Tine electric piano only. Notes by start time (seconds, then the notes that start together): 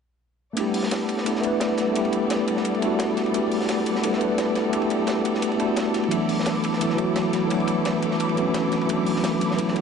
0.53 A3 B3 D4
0.58 E4 G4
1.25 A3 B3 D4 E4 A4
1.40 A3 B3 D4
1.45 E4 B4
1.92 A3 B3 D4
1.97 E4 G4
2.79 A3 B3 D4
2.84 E4 F#4
3.31 A3 B3 D4
3.36 E4 G4
4.02 A3 B3 D4 E4 A4
4.17 A3 B3 D4
4.22 E4 B4
4.69 A3 B3 D4
4.75 E4 G4
5.56 A3 B3 D4
5.61 E4 F#4
6.08 E3 F#3 A3
6.14 B3 D4
6.80 E3 F#3 A3 B3 E4
6.95 E3 F#3 A3
7.00 B3 F#4
7.47 E3 F#3 A3
7.52 B3 D4
8.34 E3 F#3 A3
8.39 B3 C#4
8.86 E3 F#3 A3
8.91 B3 D4
9.57 E3 F#3 A3 B3 E4
9.72 E3 F#3 A3
9.78 B3